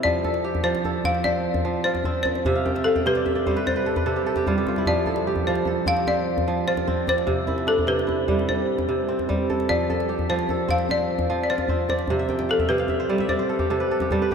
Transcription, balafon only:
0, 0, Header, 1, 2, 480
1, 0, Start_track
1, 0, Tempo, 401875
1, 45, Time_signature, 12, 3, 24, 8
1, 17136, End_track
2, 0, Start_track
2, 0, Title_t, "Balafon"
2, 0, Program_c, 0, 12
2, 40, Note_on_c, 0, 74, 91
2, 763, Note_on_c, 0, 72, 82
2, 786, Note_off_c, 0, 74, 0
2, 1256, Note_on_c, 0, 77, 87
2, 1260, Note_off_c, 0, 72, 0
2, 1476, Note_off_c, 0, 77, 0
2, 1484, Note_on_c, 0, 74, 83
2, 2199, Note_on_c, 0, 72, 93
2, 2229, Note_off_c, 0, 74, 0
2, 2648, Note_off_c, 0, 72, 0
2, 2663, Note_on_c, 0, 72, 93
2, 3349, Note_off_c, 0, 72, 0
2, 3396, Note_on_c, 0, 69, 90
2, 3651, Note_off_c, 0, 69, 0
2, 3665, Note_on_c, 0, 71, 89
2, 4330, Note_off_c, 0, 71, 0
2, 4383, Note_on_c, 0, 72, 78
2, 5528, Note_off_c, 0, 72, 0
2, 5822, Note_on_c, 0, 74, 89
2, 6488, Note_off_c, 0, 74, 0
2, 6534, Note_on_c, 0, 72, 86
2, 6978, Note_off_c, 0, 72, 0
2, 7020, Note_on_c, 0, 77, 94
2, 7259, Note_on_c, 0, 74, 88
2, 7262, Note_off_c, 0, 77, 0
2, 7926, Note_off_c, 0, 74, 0
2, 7974, Note_on_c, 0, 72, 88
2, 8454, Note_off_c, 0, 72, 0
2, 8469, Note_on_c, 0, 72, 93
2, 9172, Note_on_c, 0, 69, 85
2, 9200, Note_off_c, 0, 72, 0
2, 9413, Note_on_c, 0, 71, 80
2, 9417, Note_off_c, 0, 69, 0
2, 10082, Note_off_c, 0, 71, 0
2, 10138, Note_on_c, 0, 72, 77
2, 11284, Note_off_c, 0, 72, 0
2, 11577, Note_on_c, 0, 74, 85
2, 12244, Note_off_c, 0, 74, 0
2, 12299, Note_on_c, 0, 72, 82
2, 12787, Note_off_c, 0, 72, 0
2, 12787, Note_on_c, 0, 77, 85
2, 13023, Note_off_c, 0, 77, 0
2, 13032, Note_on_c, 0, 74, 82
2, 13644, Note_off_c, 0, 74, 0
2, 13658, Note_on_c, 0, 74, 65
2, 13734, Note_off_c, 0, 74, 0
2, 13735, Note_on_c, 0, 72, 81
2, 14196, Note_off_c, 0, 72, 0
2, 14210, Note_on_c, 0, 72, 79
2, 14880, Note_off_c, 0, 72, 0
2, 14939, Note_on_c, 0, 69, 83
2, 15154, Note_on_c, 0, 71, 80
2, 15179, Note_off_c, 0, 69, 0
2, 15831, Note_off_c, 0, 71, 0
2, 15875, Note_on_c, 0, 72, 76
2, 17031, Note_off_c, 0, 72, 0
2, 17136, End_track
0, 0, End_of_file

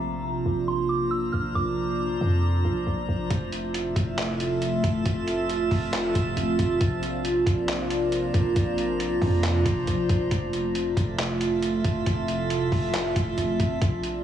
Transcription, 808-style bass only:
0, 0, Header, 1, 2, 480
1, 0, Start_track
1, 0, Key_signature, -1, "major"
1, 0, Tempo, 437956
1, 1702, Time_signature, 4, 2, 24, 8
1, 15604, End_track
2, 0, Start_track
2, 0, Title_t, "808-style bass"
2, 0, Program_c, 0, 38
2, 0, Note_on_c, 0, 34, 105
2, 473, Note_off_c, 0, 34, 0
2, 500, Note_on_c, 0, 34, 104
2, 1423, Note_off_c, 0, 34, 0
2, 1462, Note_on_c, 0, 34, 100
2, 1692, Note_off_c, 0, 34, 0
2, 1701, Note_on_c, 0, 34, 106
2, 2392, Note_off_c, 0, 34, 0
2, 2422, Note_on_c, 0, 41, 108
2, 2883, Note_off_c, 0, 41, 0
2, 2901, Note_on_c, 0, 34, 107
2, 3132, Note_off_c, 0, 34, 0
2, 3142, Note_on_c, 0, 34, 96
2, 3372, Note_off_c, 0, 34, 0
2, 3382, Note_on_c, 0, 34, 104
2, 3612, Note_off_c, 0, 34, 0
2, 3623, Note_on_c, 0, 29, 108
2, 4314, Note_off_c, 0, 29, 0
2, 4341, Note_on_c, 0, 29, 109
2, 5263, Note_off_c, 0, 29, 0
2, 5303, Note_on_c, 0, 29, 105
2, 5533, Note_off_c, 0, 29, 0
2, 5542, Note_on_c, 0, 29, 107
2, 6233, Note_off_c, 0, 29, 0
2, 6260, Note_on_c, 0, 29, 109
2, 6722, Note_off_c, 0, 29, 0
2, 6743, Note_on_c, 0, 29, 105
2, 6973, Note_off_c, 0, 29, 0
2, 6981, Note_on_c, 0, 29, 99
2, 7212, Note_off_c, 0, 29, 0
2, 7223, Note_on_c, 0, 29, 106
2, 7453, Note_off_c, 0, 29, 0
2, 7462, Note_on_c, 0, 34, 107
2, 8153, Note_off_c, 0, 34, 0
2, 8181, Note_on_c, 0, 34, 106
2, 9103, Note_off_c, 0, 34, 0
2, 9143, Note_on_c, 0, 34, 108
2, 9373, Note_off_c, 0, 34, 0
2, 9382, Note_on_c, 0, 34, 107
2, 10073, Note_off_c, 0, 34, 0
2, 10101, Note_on_c, 0, 41, 108
2, 10562, Note_off_c, 0, 41, 0
2, 10583, Note_on_c, 0, 34, 107
2, 10813, Note_off_c, 0, 34, 0
2, 10822, Note_on_c, 0, 34, 96
2, 11053, Note_off_c, 0, 34, 0
2, 11063, Note_on_c, 0, 34, 101
2, 11293, Note_off_c, 0, 34, 0
2, 11303, Note_on_c, 0, 29, 105
2, 11994, Note_off_c, 0, 29, 0
2, 12021, Note_on_c, 0, 29, 107
2, 12943, Note_off_c, 0, 29, 0
2, 12983, Note_on_c, 0, 29, 104
2, 13213, Note_off_c, 0, 29, 0
2, 13223, Note_on_c, 0, 29, 111
2, 13914, Note_off_c, 0, 29, 0
2, 13941, Note_on_c, 0, 29, 107
2, 14402, Note_off_c, 0, 29, 0
2, 14423, Note_on_c, 0, 29, 110
2, 14653, Note_off_c, 0, 29, 0
2, 14661, Note_on_c, 0, 29, 96
2, 14892, Note_off_c, 0, 29, 0
2, 14903, Note_on_c, 0, 29, 101
2, 15133, Note_off_c, 0, 29, 0
2, 15142, Note_on_c, 0, 34, 105
2, 15604, Note_off_c, 0, 34, 0
2, 15604, End_track
0, 0, End_of_file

